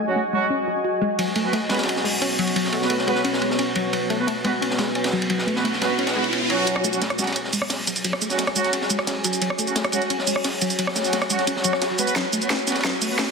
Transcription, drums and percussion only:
1.19 ride medium
1.35 ride medium
1.53 ride medium
1.69 snare medium
1.69 ride medium
1.74 snare medium
1.74 ride medium
1.78 snare medium
1.78 ride medium
1.83 snare medium
1.83 ride medium
1.89 ride medium
1.96 snare medium
2.05 open hi-hat medium
2.22 ride medium
2.39 ride medium
2.47 ride soft
2.56 ride medium
2.65 snare soft
2.72 ride medium
2.82 snare medium
2.90 ride medium
2.98 snare soft
3.08 ride medium
3.15 snare soft
3.24 ride medium
3.33 snare medium
3.42 ride medium
3.50 snare medium
3.59 ride medium
3.75 ride medium
3.93 ride medium
4.10 ride medium
4.28 ride medium
4.44 ride medium
4.62 ride medium
4.70 snare medium
4.78 snare loud
4.78 ride medium
4.95 ride medium
5.04 snare medium
5.04 ride medium
5.22 ride medium
5.30 ride medium
5.38 snare soft
5.48 ride medium
5.56 snare medium
5.65 ride medium
5.73 snare soft
5.82 snare loud
5.82 ride medium
5.99 ride medium
6.07 snare loud
6.07 ride medium
6.24 ride medium
6.33 ride medium
6.50 ride medium
6.67 closed hi-hat medium
6.67 ride medium
6.76 cross-stick medium
6.84 closed hi-hat medium
6.84 ride medium
6.84 shaker medium
6.93 closed hi-hat soft
6.93 shaker soft
7.02 snare loud
7.02 closed hi-hat loud
7.02 ride medium
7.10 cross-stick soft
7.10 closed hi-hat soft
7.18 snare medium
7.18 closed hi-hat medium
7.18 ride medium
7.18 shaker medium
7.23 snare medium
7.23 ride medium
7.27 snare medium
7.27 closed hi-hat soft
7.27 ride medium
7.32 snare medium
7.32 ride medium
7.36 closed hi-hat loud
7.36 ride medium
7.44 snare medium
7.53 closed hi-hat medium
7.53 open hi-hat medium
7.53 shaker medium
7.62 cross-stick soft
7.70 snare loud
7.70 closed hi-hat medium
7.70 ride medium
7.87 closed hi-hat medium
7.87 ride medium
7.87 shaker medium
7.96 closed hi-hat soft
7.96 ride soft
7.96 shaker soft
8.04 closed hi-hat loud
8.04 ride medium
8.13 cross-stick medium
8.13 snare soft
8.22 closed hi-hat medium
8.22 ride medium
8.22 shaker medium
8.30 snare medium
8.30 closed hi-hat soft
8.30 shaker soft
8.38 snare loud
8.38 closed hi-hat medium
8.38 ride medium
8.47 cross-stick soft
8.47 snare soft
8.47 closed hi-hat soft
8.56 closed hi-hat medium
8.56 ride medium
8.56 shaker medium
8.64 snare soft
8.64 closed hi-hat soft
8.73 closed hi-hat medium
8.73 ride medium
8.81 snare medium
8.90 closed hi-hat medium
8.90 ride medium
8.90 shaker medium
8.98 cross-stick soft
8.98 snare medium
9.07 snare loud
9.07 closed hi-hat medium
9.07 ride medium
9.24 closed hi-hat medium
9.24 ride medium
9.24 shaker medium
9.33 closed hi-hat soft
9.33 shaker soft
9.42 closed hi-hat medium
9.42 ride medium
9.50 cross-stick medium
9.59 closed hi-hat medium
9.59 ride medium
9.59 shaker medium
9.67 closed hi-hat soft
9.67 shaker soft
9.76 snare loud
9.76 closed hi-hat medium
9.76 ride medium
9.84 cross-stick soft
9.84 closed hi-hat soft
9.92 closed hi-hat medium
9.92 ride medium
9.92 shaker medium
10.02 closed hi-hat soft
10.10 closed hi-hat medium
10.10 ride medium
10.19 snare medium
10.27 closed hi-hat medium
10.27 open hi-hat medium
10.27 shaker medium
10.36 cross-stick soft
10.44 snare loud
10.44 closed hi-hat medium
10.44 ride medium
10.61 closed hi-hat medium
10.61 ride medium
10.61 shaker medium
10.70 closed hi-hat soft
10.70 ride soft
10.70 shaker soft
10.79 closed hi-hat medium
10.79 ride medium
10.87 cross-stick medium
10.87 snare soft
10.95 snare loud
10.95 closed hi-hat medium
10.95 ride medium
10.95 shaker medium
11.04 snare soft
11.04 closed hi-hat soft
11.04 shaker soft
11.13 snare loud
11.13 closed hi-hat medium
11.13 ride medium
11.22 cross-stick soft
11.22 snare soft
11.22 closed hi-hat soft
11.30 closed hi-hat medium
11.30 ride medium
11.30 shaker medium
11.39 snare soft
11.39 closed hi-hat soft
11.47 closed hi-hat medium
11.47 ride medium
11.56 snare medium
11.64 closed hi-hat medium
11.64 ride medium
11.64 shaker medium
11.73 cross-stick soft
11.73 snare medium
11.82 snare loud
11.82 closed hi-hat medium
11.82 ride medium
11.99 closed hi-hat medium
11.99 ride medium
11.99 shaker medium
12.07 closed hi-hat soft
12.07 shaker soft
12.16 snare soft
12.16 closed hi-hat medium
12.16 ride medium
12.33 closed hi-hat medium
12.33 ride medium
12.33 shaker medium
12.42 closed hi-hat soft
12.42 shaker soft
12.50 snare medium
12.50 snare loud
12.50 closed hi-hat medium
12.50 ride medium
12.59 closed hi-hat soft
12.67 snare medium
12.67 closed hi-hat medium
12.67 ride medium
12.67 shaker medium
12.72 snare medium
12.72 ride medium
12.75 snare medium
12.75 closed hi-hat soft
12.75 ride medium
12.80 snare medium
12.80 ride medium
12.84 snare medium
12.84 closed hi-hat medium
12.84 ride medium
12.93 snare medium
13.01 closed hi-hat medium
13.01 open hi-hat medium
13.01 shaker medium
13.18 snare loud
13.18 snare medium
13.18 closed hi-hat medium
13.18 ride medium

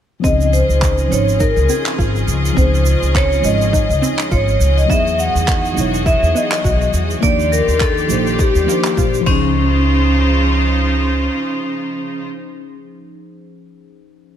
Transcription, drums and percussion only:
0.24 kick medium
0.24 shaker medium
0.41 shaker soft
0.53 shaker medium
0.70 shaker soft
0.82 kick loud
0.82 clap medium
0.82 shaker medium
0.98 shaker soft
1.13 shaker medium
1.29 shaker soft
1.40 kick medium
1.40 shaker medium
1.57 shaker soft
1.69 shaker medium
1.86 clap medium
1.86 shaker soft
1.99 kick loud
1.99 shaker medium
2.16 shaker soft
2.28 shaker medium
2.45 shaker soft
2.57 kick medium
2.57 shaker medium
2.75 shaker soft
2.86 shaker medium
3.03 shaker soft
3.15 kick loud
3.15 clap medium
3.15 shaker medium
3.32 shaker soft
3.44 shaker medium
3.61 shaker medium
3.73 kick loud
3.73 shaker medium
3.91 shaker soft
4.03 shaker medium
4.19 clap medium
4.19 shaker medium
4.31 kick loud
4.31 shaker medium
4.48 shaker soft
4.61 shaker medium
4.78 shaker soft
4.90 kick medium
4.90 shaker medium
5.07 shaker soft
5.19 shaker medium
5.36 shaker medium
5.48 kick loud
5.48 clap medium
5.48 shaker medium
5.65 shaker soft
5.78 shaker medium
5.94 shaker soft
6.06 kick medium
6.06 shaker medium
6.24 shaker soft
6.36 shaker medium
6.52 clap medium
6.52 shaker medium
6.64 kick loud
6.64 shaker medium
6.81 shaker soft
6.94 shaker medium
7.10 shaker medium
7.22 kick loud
7.22 shaker medium
7.40 shaker soft
7.53 shaker medium
7.68 shaker soft
7.80 kick loud
7.80 clap medium
7.80 shaker medium
7.98 shaker soft
8.10 shaker medium
8.27 shaker medium
8.39 kick medium
8.39 shaker medium
8.56 shaker soft
8.69 shaker medium
8.84 clap medium
8.84 shaker medium
8.97 kick loud
8.97 shaker medium
9.14 shaker soft
9.26 kick loud
9.26 crash medium

